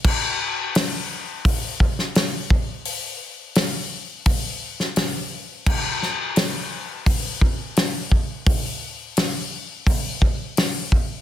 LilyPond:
\new DrumStaff \with { instrumentName = "Drums" } \drummode { \time 4/4 \tempo 4 = 86 <cymc bd>4 <hho sn>4 <hho bd>8 bd16 sn16 <hho sn>8 bd8 | hho4 <hho sn>4 <hho bd>8. sn16 <hho sn>4 | <cymc bd>8 sn8 <hho sn>4 <hho bd>8 bd8 <hho sn>8 bd8 | <hho bd>4 <hho sn>4 <hho bd>8 bd8 <hho sn>8 bd8 | }